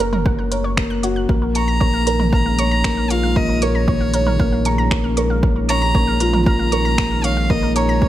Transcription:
Already playing: F#1 A#3 C#5 A#5
0.00 A#4, closed hi-hat
0.13 A#4, mid tom
0.26 A#3 F#5, kick
0.39 F#5
0.51 A#4 C#5, closed hi-hat
0.64 C#5
0.77 A#3 G6, finger snap, kick
0.90 F#6
1.03 F#4 C#5, closed hi-hat
1.16 F#6
1.29 A#1 A#2 A#3 A#4, kick
1.42 A#4
1.48 D#3
1.55 A#5 C#6, closed hi-hat
1.61 G#3
1.68 A#5
1.80 A#3 C#5, kick
1.92 C#4 F5
2.07 A#4, closed hi-hat
2.20 A#4, mid tom
2.32 A#3 F5 A#5, kick
2.46 F5
2.59 C#5 C#6, closed hi-hat
2.71 A#5
2.84 A#3 C#6, finger snap, kick
2.97 F6
3.10 F4 F5 C#6, closed hi-hat
3.23 F5
3.36 A#3 A#4 D#5, kick
3.49 A#4
3.62 A#4 C#5 C#6, closed hi-hat
3.75 A#5
3.88 A#3 C#5, kick
4.01 F5
4.14 A#4 C#5, closed hi-hat
4.27 A#4, mid tom
4.40 A#3 F5, kick
4.52 F5
4.65 A#5 C#6, closed hi-hat
4.78 A#5
4.91 A#3 C#6, finger snap, kick
5.04 F6
5.17 A#4 C#6, closed hi-hat
5.30 F5
5.43 A#3 A#4, kick
5.56 A#4
5.69 C#5 A#5 C#6, closed hi-hat
5.82 A#5
5.95 A#3 C#5, kick
6.07 F5
6.20 F4 A#4, closed hi-hat
6.33 A#4, mid tom
6.46 A#3 F5 A#5, kick
6.59 F5
6.72 A#4 C#6, closed hi-hat
6.85 A#5
6.98 A#3 C#6, finger snap, kick
7.11 F6
7.24 C#5 F5 C#6, closed hi-hat
7.37 F5
7.50 A#3 A#4 D#5, kick
7.63 A#4
7.76 C#5 A#5 C#6, closed hi-hat
7.89 A#5
8.02 A#3 C#5, kick

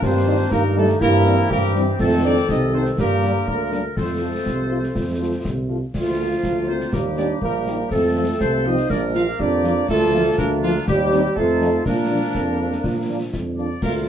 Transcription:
Already playing: D4
0.02 G2 D#3 A#3 C4 C5, concert bass drum, snare
0.27 G3 A#3 D#4
0.51 G2 A#3 D#4 A#4, concert bass drum, snare
0.76 G3 A3 A#3 D#4 A4
0.88 snare
1.00 G2 E3 A#3 C4 E4 A#4, concert bass drum, snare
1.25 G3 C4 E4, snare
1.50 G2 A#3 G4 A#4, concert bass drum
1.75 G3 C4 E4, snare
1.99 F2 D#3 A3 A4, concert bass drum, snare, crash
2.24 A3 C4 D4 D#4 D5
2.49 C2 D#4 D#5, concert bass drum, snare
2.73 A3 C4 D#4 C5
2.85 snare
2.98 G2 D3 A#3 G4 A#4, concert bass drum, snare
3.22 G3 A#3 D4, snare
3.47 D2 A#4, concert bass drum
3.71 G3 A#3 D4 A#4, snare
3.96 F2 F3 A3 C4 A4 C5, concert bass drum, snare
4.21 A3 F4
4.46 C2, concert bass drum, snare
4.71 A3 F4
4.83 snare
4.95 F2, concert bass drum, snare
5.21 A3 F4
5.45 C2, concert bass drum, snare
5.69 A3 F4
5.94 D2 F3 A#3 F4, concert bass drum, snare, crash
6.18 A#3 F4
6.43 D2, concert bass drum, snare
6.67 A#3 C4 F4 C5
6.80 snare
6.93 D#2 G3 A#3 G4 A#4, concert bass drum, snare
7.17 A#3 D4 D#4 G4 D5, snare
7.42 A#1 A#3 A#4, concert bass drum
7.67 A#3 D#4 G4, snare
7.91 F2 F3 A3 C4 A4, concert bass drum, snare
8.16 F3 C4 F4
8.40 C2 C5, concert bass drum, snare
8.66 F3 C4 D#4 F4 D#5
8.77 snare
8.90 A#1 A#3 D4 A#4 D5, concert bass drum, snare
9.14 F3 A#3 F4 F5, snare
9.39 F2 D4 G4 D5, concert bass drum
9.64 F3 A#3 F4, snare
9.88 D2 F3 A3 F4 A4, concert bass drum, snare, crash
10.13 F3 A#3 F4
10.37 D2 A#3 D4 A#4, concert bass drum, snare
10.62 F3 A#3 F4
10.75 snare
10.87 D#2 G3 C4 G4, concert bass drum, snare
11.12 G3 C4 D#4, snare
11.35 F2 F3 A3 D#4 F4 A4, concert bass drum
11.61 F3 C4 D#4, snare
11.85 A#2 F3 A#3 D4 A#4, concert bass drum, snare
12.11 F3 A#3 D4
12.35 F2, concert bass drum, snare
12.60 F3 A#3 D4
12.72 snare
12.84 A#2, concert bass drum, snare
13.09 F3 A#3 D4
13.33 F2, concert bass drum, snare
13.57 F3 A#3 D4 D5
13.82 D2 F3 A#3 F4 A#4, concert bass drum, crash

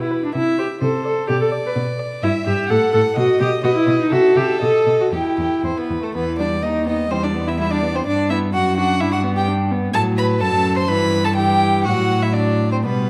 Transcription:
Already playing: B2 B4
0.00 E4
0.11 B4
0.25 D4
0.35 C3 E4 E5
0.59 G4 C5
0.81 C3 A4 C5
1.05 A4 D5
1.29 B2 G4 D5
1.41 A4
1.52 D5
1.66 B4
1.76 B2
1.99 D5
2.22 G2 E4 E5
2.46 G2 G4 E5
2.69 A2 A4 F#5
2.93 A2 A4 F#5
3.16 B2 F#4 D#5
3.40 B2 G4 D#5
3.63 B2 F#4 B4 D#5
3.75 E4
3.87 B2 D#5
4.01 D#4
4.11 C3 F#4 A4 E5
4.36 C3 G4 E5
4.61 B2 A4 D#5
4.87 B2 D#5
5.00 F#4
5.12 E2 E4 G4 G5
5.38 E2 G5
5.64 E2 C4 C5
5.77 B3 B4
5.90 E2
6.03 A3 A4
6.14 E2 E3 B3 B4
6.38 G3 D4 D5
6.62 D#2 D#4 D#5
6.86 B3 D#4 D#5
7.10 E2 G3 C4 C5
7.23 D4 D5
7.34 B3
7.47 E4 E5
7.58 G3 E4 E5
7.71 D4 D5
7.83 B3
7.95 C4 C5
8.06 G2 D4 D5
8.30 B3 E4 E5
8.53 F#2 F#4 F#5
8.76 D4 F#4 F#5
9.00 G2 D4 E4 E5
9.12 F#4 F#5
9.24 B3
9.35 G4 G5
9.48 D4
9.71 B3
9.94 A2 F#3 A4 A5
10.17 B4 B5
10.40 F#2 F#3 A4 A5
10.76 C5 C6
10.88 G2 E3 B4 B5
11.24 A4 A5
11.36 E3 G4 G5
11.84 A2 F#3 F#4 F#5
12.22 E4 E5
12.33 D4 D5
12.72 C4 C5
12.84 B2 G3 B3 B4

